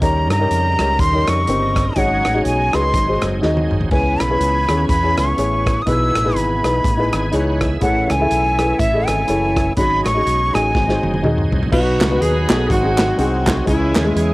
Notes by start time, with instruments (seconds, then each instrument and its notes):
0.01 fingered electric bass D#2, tonewheel organ C#3 G3 D#4 A#4, grand piano D#3 D#4 G4 A#4 C#5, flute A#5, kick, closed hi-hat
0.30 fingered electric bass G2, flute A#5, cross-stick, closed hi-hat
0.39 grand piano D#4 G4 A#4 C#5
0.51 fingered electric bass F2, closed hi-hat
0.79 fingered electric bass C#2, grand piano D#4 G4 A#4 C#5, cross-stick, closed hi-hat
0.99 fingered electric bass D#2, flute C6, kick, closed hi-hat
1.13 grand piano D#4 G4 A#4 C#5
1.27 fingered electric bass F2, flute C#6, cross-stick, closed hi-hat
1.47 fingered electric bass G1, grand piano C4 D#4 G4 A#4, closed hi-hat
1.76 kick, cross-stick, closed hi-hat
1.96 fingered electric bass G#1, grand piano G#2 D#4 F#4 G#4 C#5, tonewheel organ F#3 C#4 D#4 G#4, flute F#5, kick, closed hi-hat
2.25 fingered electric bass A1, cross-stick, closed hi-hat
2.34 grand piano D#4 F#4 G#4 C#5
2.45 fingered electric bass B1, flute G#5, closed hi-hat
2.73 fingered electric bass C#2, grand piano D#4 F#4 G#4 B4, flute C6, cross-stick, closed hi-hat
2.94 fingered electric bass G#1, grand piano G#2, tonewheel organ F#3 C4 D#4 G#4, kick, closed hi-hat
3.07 grand piano D#4 F#4 G#4 C5
3.22 fingered electric bass F#1, cross-stick, closed hi-hat
3.42 fingered electric bass D#2, grand piano D#4 F#4 G#4 D#5, snare
3.57 high tom
3.71 fingered electric bass G#1, mid tom
3.81 floor tom
3.91 fingered electric bass C#2, grand piano C#3 C#4 E4 G#4 B4, tonewheel organ E3 B3 C#4 G#4, flute G#5, kick, splash
4.20 fingered electric bass B1, flute B5, cross-stick, closed hi-hat
4.30 grand piano C#4 E4 G#4 B4
4.40 fingered electric bass C#2, closed hi-hat
4.68 fingered electric bass D#2, grand piano C#4 E4 G#4 C#5, cross-stick, closed hi-hat
4.89 fingered electric bass E2, flute B5, kick, closed hi-hat
5.03 grand piano C#4 E4 G#4 C#5
5.17 fingered electric bass C#2, flute C#6, cross-stick, closed hi-hat
5.37 fingered electric bass A1, grand piano C#4 E4 G#4 C#5, closed hi-hat
5.66 kick, cross-stick, closed hi-hat
5.82 flute D#6
5.86 fingered electric bass B1, grand piano B2 D#4 E4 G#4 B4, tonewheel organ E3 B3 F#4, flute E6, kick, closed hi-hat
5.92 tonewheel organ G#4
6.15 fingered electric bass A1, cross-stick, closed hi-hat
6.24 grand piano D#4 E4 G#4 B4
6.35 fingered electric bass G#1, flute B5, closed hi-hat
6.63 fingered electric bass B1, grand piano D#4 E4 G#4 B4, cross-stick, closed hi-hat
6.84 fingered electric bass A1, kick, closed hi-hat
6.97 grand piano D#4 E4 G#4 B4
7.13 fingered electric bass G#1, tonewheel organ G#5, cross-stick, closed hi-hat
7.32 fingered electric bass C#2, grand piano D#4 E4 G#4 C#5, tonewheel organ F#5, closed hi-hat
7.61 tonewheel organ E5, kick, cross-stick, closed hi-hat
7.80 fingered electric bass A1, grand piano A2 E4 G#4 A4 C#5, tonewheel organ E3 A3 C#4 E4, flute F#5, kick, closed hi-hat
8.10 fingered electric bass C#2, flute G#5, cross-stick, closed hi-hat
8.19 grand piano E4 G#4 A4 E5
8.31 fingered electric bass B1, closed hi-hat
8.58 grand piano E4 G#4 A4 B4, cross-stick, closed hi-hat
8.79 fingered electric bass A1, flute E5, kick, closed hi-hat
8.93 grand piano E4 G#4 A4 D#5
9.07 fingered electric bass G#1, flute G#5, cross-stick, closed hi-hat
9.28 fingered electric bass F#1, grand piano E4 G#4 A4 C#5, closed hi-hat
9.57 kick, cross-stick, closed hi-hat
9.77 fingered electric bass G#1, grand piano G#2 D#4 F#4 G#4 C#5, tonewheel organ F#3 C#4 D#4 F#4, flute B5, kick, closed hi-hat
9.83 tonewheel organ G#4
10.05 fingered electric bass A1, flute C#6, cross-stick, closed hi-hat
10.15 grand piano D#4 F#4 G#4 D#5
10.26 fingered electric bass B1, closed hi-hat
10.53 fingered electric bass A1, grand piano D#4 F#4 G#4 D#5, flute G#5, cross-stick, closed hi-hat
10.75 fingered electric bass G#1, grand piano G#2, tonewheel organ F#3 C4 D#4 G#4, kick, snare
10.88 grand piano D#4 F#4 G#4 C5, snare
11.03 fingered electric bass F#1, high tom
11.14 high tom
11.23 fingered electric bass D#2, grand piano D#4 F#4 G#4 D#5, mid tom
11.38 mid tom
11.52 fingered electric bass C2, floor tom
11.63 floor tom
11.72 fingered electric bass B1, grand piano B2 B3 D#4 F#4 B4, tonewheel organ F#3 B3 D4 B4, saxophone section B3 D#4 F#4, kick, crash
11.78 tonewheel organ D#4
12.00 fingered electric bass C#2, snare, clap, closed hi-hat
12.10 grand piano B3 D#4 F#4 B4
12.21 fingered electric bass D#2, saxophone section B3 D#4 G#4, closed hi-hat
12.48 fingered electric bass B1, grand piano B3 D#4 F#4 A4, snare, clap, closed hi-hat
12.70 fingered electric bass G#1, grand piano G#2, tonewheel organ F#3 C4 D#4 G#4, saxophone section C4 D#4 F#4, kick, closed hi-hat
12.83 grand piano C4 D#4 F#4 G#4
12.98 snare, clap, closed hi-hat
13.18 fingered electric bass C2, grand piano C4 D#4 F#4 G#4, saxophone section C4 D#4 F#4, closed hi-hat
13.47 kick, snare, clap, closed hi-hat
13.66 fingered electric bass C#2, grand piano C#3 G#3 C#4 E4 G#4, tonewheel organ E3 G#3 C#4 G#4, saxophone section G#3 C#4 E4, kick, closed hi-hat
13.95 fingered electric bass D#2, snare, clap, closed hi-hat
14.05 grand piano G#3 C#4 E4 G#4
14.16 fingered electric bass E2, saxophone section C#4 E4 G#4, closed hi-hat